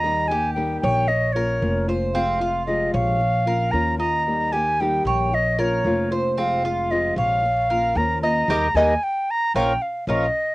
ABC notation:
X:1
M:4/4
L:1/8
Q:1/4=114
K:Bbdor
V:1 name="Flute"
b a g g e d2 z | f2 e f3 b b- | b a g g e d2 z | f2 e f3 b b- |
b a g b g f e2 |]
V:2 name="Cuban tres"
e G2 d2 B2 c | C F2 d2 B2 e- | e G2 d2 B2 c | C F2 d2 B2 e |
[GBe] [GBe] z2 [FBd] z [FBd] z |]
V:3 name="Nylon-string guitar"
[E,G,B,EG] [B,EG] [E,G,B,EG]2 z [B,DF] [F,B,DF] [B,DF] | [C,F,A,CF] [A,CF] [C,F,A,CF]2 z [B,DF] [F,B,DF] [B,DF] | [E,G,B,EG] [B,EG] [E,G,B,EG]2 z [B,DF] [F,B,DF] [B,DF] | [C,F,A,CF] [A,CF] [C,F,A,CF]2 z [B,DF] [F,B,DF] [B,DF] |
[G,B,E] [G,B,E] z2 [F,B,D] z [F,B,D] z |]
V:4 name="Upright bass" clef=bass
E,,3 B,,,3 F,,,2- | F,,,3 B,,,3 E,,2- | E,,3 B,,,3 F,,,2- | F,,,3 B,,,3 E,,2 |
E,, E,, z2 B,,, z B,,, z |]